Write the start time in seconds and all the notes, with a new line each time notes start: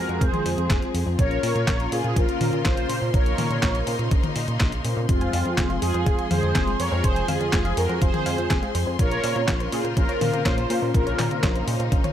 Already playing: F3 G#3 C4 F4 F#4 G#4 A#4 C5
0.09 F2, closed hi-hat
0.21 F1 G#4 C5, kick, closed hi-hat
0.34 closed hi-hat, high tom
0.45 F2 C4 F4 G#4 C5, open hi-hat
0.58 F2, closed hi-hat
0.70 F1, kick, snare, clap, closed hi-hat
0.82 closed hi-hat
0.94 F2, open hi-hat
1.07 F2
1.19 A#1 C#3 A#3 C#4 F4 A#4 C#5 C6, kick, closed hi-hat
1.31 closed hi-hat
1.43 A#2, open hi-hat
1.55 A#2, closed hi-hat
1.68 A#1, kick, snare, clap, closed hi-hat
1.80 closed hi-hat
1.92 A#2 C#4 F4 G#4 A#4 C5, open hi-hat
2.04 A#2, closed hi-hat
2.16 A#1 F4 A#4, kick, closed hi-hat
2.29 closed hi-hat
2.41 A#2 C#4 F4 A#4 C5, open hi-hat, high tom
2.53 A#2, closed hi-hat
2.65 A#1 F4 C5, kick, snare, clap, closed hi-hat
2.77 closed hi-hat
2.89 A#2, open hi-hat
3.02 A#2
3.14 A#1 C#4 D#4 F4 A#4 C#5, kick, closed hi-hat
3.26 closed hi-hat
3.38 A#2, open hi-hat, high tom
3.50 A#2, closed hi-hat
3.63 A#1, kick, snare, clap, closed hi-hat
3.75 closed hi-hat
3.87 A#2 C#4 F4 A#4 C5, open hi-hat
3.99 A#2, closed hi-hat
4.11 A#1, kick, closed hi-hat
4.24 closed hi-hat, high tom
4.36 A#2, open hi-hat
4.48 A#2, closed hi-hat
4.60 A#1, kick, snare, clap, closed hi-hat
4.72 closed hi-hat
4.85 A#2 C#4 F4 A#4 C5, open hi-hat
4.97 A#2
5.09 F1 F3 G#3 C4 F4 G#4 C5 C6, kick, closed hi-hat
5.21 G#5, closed hi-hat
5.33 F2 F5, open hi-hat
5.46 F2 C4, closed hi-hat
5.58 F1 G#5, kick, snare, clap, closed hi-hat
5.70 F5, closed hi-hat
5.82 F2 C4 F4 G#4 C5, open hi-hat
5.94 F2 C5, closed hi-hat
6.06 F1 F4, kick, closed hi-hat
6.19 G#5, closed hi-hat
6.31 F2 C4 F4 G#4 C5 F5, open hi-hat, high tom
6.43 F2 C4, closed hi-hat
6.55 F1 G#5, kick, snare, clap, closed hi-hat
6.67 G#3, closed hi-hat
6.80 F2 A#4 C5 C#5, open hi-hat
6.92 F2 C5
7.04 F1 G#3 C4 F4 G#4 C5, kick, closed hi-hat
7.16 G#5, closed hi-hat
7.28 F2 F4 G#4 F5, open hi-hat, high tom
7.41 F2 C4, closed hi-hat
7.53 F1 G#5, kick, snare, clap, closed hi-hat
7.65 F5, closed hi-hat
7.77 F2 C4 F4 F#4 G#4 A#4 C5, open hi-hat
7.89 F2 C5, closed hi-hat
8.01 F1 F4 G#4 C5, kick, closed hi-hat
8.14 G#5, closed hi-hat, high tom
8.26 F2 C4 F4 G#4 C5 F5, open hi-hat
8.38 F2 C4, closed hi-hat
8.50 F1 G#5, kick, snare, clap, closed hi-hat
8.62 G#3, closed hi-hat
8.75 F2 C5, open hi-hat
8.87 F2 C5
8.99 A#1 C#3 A#3 C#4 F4 A#4 C#5, kick, closed hi-hat
9.11 C#5, closed hi-hat
9.24 A#2 C5, open hi-hat
9.36 A#2 C4, closed hi-hat
9.48 A#1 C#5, kick, snare, clap, closed hi-hat
9.60 C5, closed hi-hat
9.72 A#2 C#4 F4 G#4 A#4 C5, open hi-hat
9.84 A#2 A#4, closed hi-hat
9.97 A#1 C#4 F4 A#4, kick, closed hi-hat
10.09 C#5, closed hi-hat
10.21 A#2 C#4 F4 A#4 C5, open hi-hat, high tom
10.33 A#2 C4, closed hi-hat
10.46 A#1 F4 C5 C#5, kick, snare, clap, closed hi-hat
10.58 A#3, closed hi-hat
10.70 A#2 A#4, open hi-hat
10.82 A#2 A#4
10.94 A#1 A#3 C#4 D#4 F4 A#4 C5, kick, closed hi-hat
11.07 C#5, closed hi-hat
11.19 A#2 C5, clap, open hi-hat, high tom
11.31 A#2 C4, closed hi-hat
11.43 A#1 C#5, kick, snare, clap, closed hi-hat
11.55 C5, closed hi-hat
11.67 A#2 C#4 F4 A#4 C5, open hi-hat
11.80 A#2 A#4, closed hi-hat
11.92 A#1 C#4, kick, closed hi-hat
12.04 C#5, closed hi-hat, high tom